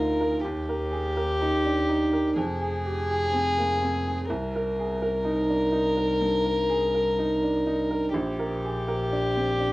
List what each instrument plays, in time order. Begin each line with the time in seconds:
Already playing: upright piano D2 D#4 G#4 A#4, double bass D2, violin A#4
0.00 upright piano F4
0.20 upright piano A#4
0.43 double bass D#2, upright piano D#2, violin G4
0.69 upright piano A#4
0.91 upright piano G#4
1.17 upright piano A#4
1.42 upright piano D#4
1.65 upright piano D4
1.89 upright piano D#4
2.13 upright piano A#4
2.36 double bass F1, upright piano F2, violin G#4
2.61 upright piano G#4
2.85 upright piano G4
3.11 upright piano G#4
3.33 upright piano C4
3.58 upright piano A#3
3.82 upright piano C4
4.07 upright piano G#4
4.30 double bass C2, upright piano C2, violin A#4
4.56 upright piano A#4
4.79 upright piano G#4
5.02 upright piano A#4
5.25 upright piano D#4
5.49 upright piano D4
5.72 upright piano D#4
5.97 upright piano A#4
6.21 upright piano G2
6.45 upright piano A#4
6.69 upright piano G#4
6.94 upright piano A#4
7.19 upright piano D#4
7.43 upright piano D4
7.67 upright piano D#4
7.91 upright piano A#4
8.13 double bass A#1, upright piano A#1, violin G4
8.39 upright piano A#4
8.65 upright piano G#4
8.88 upright piano A#4
9.12 upright piano D4
9.36 upright piano C4
9.60 upright piano D4